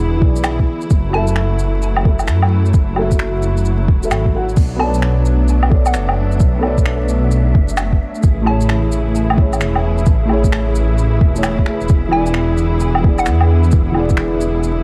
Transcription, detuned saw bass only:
Already playing: E1
0.22 B1
0.91 F#1
2.28 F#2
2.74 F#1
3.88 E1
4.11 G#1
4.57 B1
5.94 F#1
6.40 B1
7.55 F#1
8.24 A1
9.60 E1
10.07 A1
11.21 E1
11.81 E1
11.90 E1
13.27 E2
13.73 E1

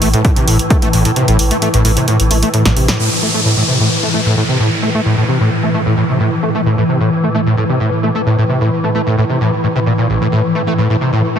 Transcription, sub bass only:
0.02 A1
0.36 A1
0.47 A1
0.82 A1
0.93 A1
1.28 A1
1.39 A1
1.74 A1
1.85 A1
2.20 A1
2.31 A1
2.65 A1
2.76 A1

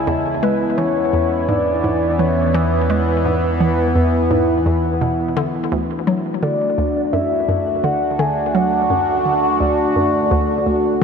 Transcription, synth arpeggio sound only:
0.07 E2
0.43 G#3
0.78 E3
1.13 E2
1.49 G#2
1.84 G#2
2.19 E3
2.54 E3
2.90 G#3
3.25 G#2
3.60 E3
3.95 E2
4.31 G#2
4.66 E2
5.01 B2
5.37 D3
5.72 D2
6.07 F#3
6.42 D3
6.78 D2
7.13 F#2
7.49 F#2
7.84 D3
8.19 D3
8.55 F#3
8.90 F#2
9.25 D3
9.61 D2
9.96 F#2
10.31 D2
10.66 D2

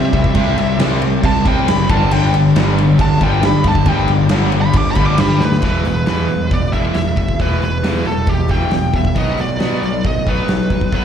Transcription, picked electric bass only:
Already playing: C3
0.13 C2
0.34 C2
0.57 C2
0.79 C2
1.23 C2
1.45 C2
1.68 F#1
1.89 G1
2.11 G1
2.33 G1
2.55 G1
2.98 G1
3.20 G1
3.42 G2
3.65 G1
3.86 G1
4.08 G1
4.31 G1
4.74 G1
4.96 G1
5.19 G2
5.41 D2
5.62 E1
5.85 E1
6.08 E2
6.29 E1
6.51 E1
6.95 E1
7.17 E1
7.40 E1
7.61 E1
7.83 E2
8.06 E1
8.27 E1
8.72 E1
8.94 E1
9.16 B1
9.38 B1
9.60 B2
9.83 B1
10.05 B1
10.49 B1
10.70 B1
10.92 B1

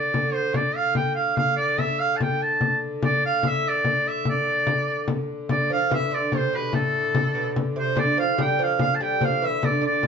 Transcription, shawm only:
Already playing: D5
0.33 C5
0.56 D5
0.76 F5
0.96 G5
1.15 F5
1.37 F5
1.57 D5
1.80 E5
2.00 F5
2.16 A5
2.22 G5
2.43 A5
3.04 D5
3.26 F5
3.47 E5
3.68 D5
4.08 E5
4.30 D5
5.50 D5
5.73 F5
5.94 E5
6.15 D5
6.36 C5
6.56 B4
6.75 A4
7.78 C5
7.99 D5
8.19 F5
8.41 G5
8.63 F5
8.82 F5
8.95 A5
9.02 G5
9.25 F5
9.45 E5
9.65 D5
9.86 D5

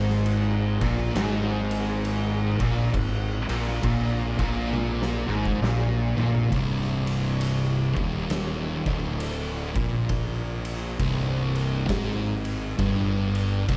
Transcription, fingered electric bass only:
Already playing: G#1
0.82 A#1
1.16 G#1
2.60 A#1
2.94 G#1
3.50 A#1
3.84 A#1
4.39 A#1
5.28 G#1
5.63 A#1
6.18 A#1
6.52 C1
7.97 D#1
8.87 D1
9.76 A#1
11.00 C1
11.89 G#1
12.79 G1
13.69 C1

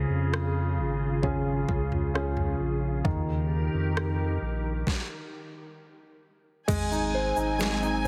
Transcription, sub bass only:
0.10 F2
0.78 G#1
1.69 C#2
2.60 A#1
3.05 D#2
3.74 F2
4.41 A#1
6.68 G#1
7.37 G#1

